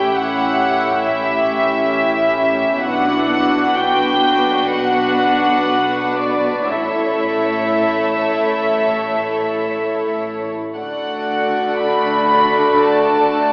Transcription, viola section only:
0, 0, Header, 1, 2, 480
1, 0, Start_track
1, 0, Tempo, 899550
1, 1511, Time_signature, 4, 2, 24, 8
1, 1511, Tempo, 936037
1, 2471, Tempo, 995025
1, 3431, Tempo, 1016949
1, 5351, Tempo, 1054482
1, 5831, Tempo, 978793
1, 6670, End_track
2, 0, Start_track
2, 0, Title_t, "Viola section"
2, 0, Program_c, 0, 48
2, 0, Note_on_c, 0, 61, 38
2, 0, Note_on_c, 0, 64, 36
2, 1490, Note_off_c, 0, 61, 0
2, 1523, Note_on_c, 0, 62, 44
2, 1987, Note_off_c, 0, 62, 0
2, 1988, Note_off_c, 0, 64, 0
2, 1993, Note_on_c, 0, 62, 49
2, 3435, Note_off_c, 0, 62, 0
2, 3435, Note_on_c, 0, 64, 42
2, 3437, Note_on_c, 0, 57, 41
2, 5237, Note_off_c, 0, 64, 0
2, 5256, Note_off_c, 0, 57, 0
2, 5350, Note_on_c, 0, 66, 39
2, 5352, Note_on_c, 0, 57, 39
2, 6670, Note_off_c, 0, 57, 0
2, 6670, Note_off_c, 0, 66, 0
2, 6670, End_track
0, 0, End_of_file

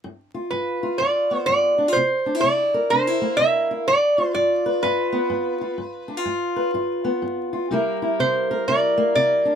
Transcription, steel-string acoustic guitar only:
0, 0, Header, 1, 2, 480
1, 0, Start_track
1, 0, Tempo, 477707
1, 50, Time_signature, 4, 2, 24, 8
1, 9598, End_track
2, 0, Start_track
2, 0, Title_t, "Steel-string acoustic guitar"
2, 0, Program_c, 0, 25
2, 42, Note_on_c, 0, 43, 68
2, 346, Note_on_c, 0, 65, 53
2, 490, Note_off_c, 0, 43, 0
2, 522, Note_on_c, 0, 43, 65
2, 821, Note_off_c, 0, 65, 0
2, 833, Note_on_c, 0, 65, 54
2, 970, Note_off_c, 0, 43, 0
2, 1003, Note_off_c, 0, 65, 0
2, 1010, Note_on_c, 0, 43, 65
2, 1015, Note_on_c, 0, 65, 57
2, 1315, Note_on_c, 0, 59, 56
2, 1454, Note_off_c, 0, 43, 0
2, 1489, Note_on_c, 0, 43, 66
2, 1786, Note_off_c, 0, 65, 0
2, 1790, Note_on_c, 0, 62, 58
2, 1891, Note_off_c, 0, 62, 0
2, 1891, Note_on_c, 0, 65, 52
2, 1933, Note_off_c, 0, 43, 0
2, 1951, Note_off_c, 0, 59, 0
2, 1972, Note_on_c, 0, 48, 74
2, 1975, Note_off_c, 0, 65, 0
2, 2273, Note_on_c, 0, 62, 56
2, 2358, Note_off_c, 0, 62, 0
2, 2358, Note_on_c, 0, 64, 46
2, 2415, Note_off_c, 0, 48, 0
2, 2447, Note_on_c, 0, 48, 67
2, 2756, Note_on_c, 0, 70, 64
2, 2892, Note_off_c, 0, 48, 0
2, 2929, Note_off_c, 0, 64, 0
2, 2938, Note_on_c, 0, 48, 71
2, 2942, Note_on_c, 0, 62, 57
2, 3087, Note_off_c, 0, 62, 0
2, 3087, Note_on_c, 0, 64, 50
2, 3231, Note_on_c, 0, 58, 59
2, 3377, Note_off_c, 0, 48, 0
2, 3406, Note_on_c, 0, 48, 73
2, 3712, Note_off_c, 0, 64, 0
2, 3726, Note_on_c, 0, 64, 59
2, 3851, Note_off_c, 0, 48, 0
2, 3871, Note_off_c, 0, 70, 0
2, 3877, Note_off_c, 0, 64, 0
2, 3890, Note_off_c, 0, 58, 0
2, 3899, Note_on_c, 0, 43, 69
2, 4200, Note_on_c, 0, 65, 61
2, 4338, Note_off_c, 0, 43, 0
2, 4368, Note_on_c, 0, 43, 63
2, 4681, Note_on_c, 0, 71, 62
2, 4812, Note_off_c, 0, 43, 0
2, 4852, Note_on_c, 0, 43, 73
2, 4856, Note_off_c, 0, 65, 0
2, 4860, Note_on_c, 0, 65, 60
2, 5149, Note_on_c, 0, 59, 57
2, 5295, Note_off_c, 0, 43, 0
2, 5322, Note_on_c, 0, 43, 80
2, 5628, Note_off_c, 0, 65, 0
2, 5640, Note_on_c, 0, 65, 54
2, 5770, Note_off_c, 0, 43, 0
2, 5788, Note_off_c, 0, 59, 0
2, 5794, Note_off_c, 0, 65, 0
2, 5794, Note_off_c, 0, 71, 0
2, 5806, Note_on_c, 0, 43, 71
2, 6110, Note_on_c, 0, 62, 56
2, 6201, Note_off_c, 0, 62, 0
2, 6201, Note_on_c, 0, 65, 42
2, 6252, Note_off_c, 0, 43, 0
2, 6285, Note_on_c, 0, 43, 69
2, 6595, Note_on_c, 0, 71, 57
2, 6732, Note_off_c, 0, 43, 0
2, 6763, Note_off_c, 0, 65, 0
2, 6771, Note_on_c, 0, 43, 65
2, 6776, Note_on_c, 0, 65, 55
2, 7078, Note_on_c, 0, 59, 55
2, 7215, Note_off_c, 0, 43, 0
2, 7255, Note_on_c, 0, 43, 67
2, 7553, Note_off_c, 0, 65, 0
2, 7565, Note_on_c, 0, 65, 52
2, 7697, Note_off_c, 0, 43, 0
2, 7713, Note_off_c, 0, 71, 0
2, 7714, Note_off_c, 0, 59, 0
2, 7717, Note_off_c, 0, 65, 0
2, 7744, Note_on_c, 0, 48, 68
2, 7749, Note_on_c, 0, 55, 62
2, 7759, Note_on_c, 0, 58, 56
2, 7762, Note_on_c, 0, 64, 54
2, 7772, Note_on_c, 0, 70, 69
2, 8045, Note_off_c, 0, 64, 0
2, 8060, Note_on_c, 0, 64, 56
2, 8182, Note_off_c, 0, 48, 0
2, 8234, Note_on_c, 0, 48, 72
2, 8545, Note_off_c, 0, 70, 0
2, 8549, Note_on_c, 0, 70, 68
2, 8667, Note_off_c, 0, 48, 0
2, 8707, Note_off_c, 0, 64, 0
2, 8719, Note_on_c, 0, 48, 65
2, 8728, Note_on_c, 0, 64, 58
2, 9006, Note_off_c, 0, 58, 0
2, 9018, Note_on_c, 0, 58, 65
2, 9150, Note_off_c, 0, 48, 0
2, 9199, Note_on_c, 0, 48, 74
2, 9490, Note_off_c, 0, 64, 0
2, 9498, Note_on_c, 0, 62, 54
2, 9593, Note_off_c, 0, 62, 0
2, 9598, Note_off_c, 0, 48, 0
2, 9598, Note_off_c, 0, 55, 0
2, 9598, Note_off_c, 0, 58, 0
2, 9598, Note_off_c, 0, 70, 0
2, 9598, End_track
0, 0, End_of_file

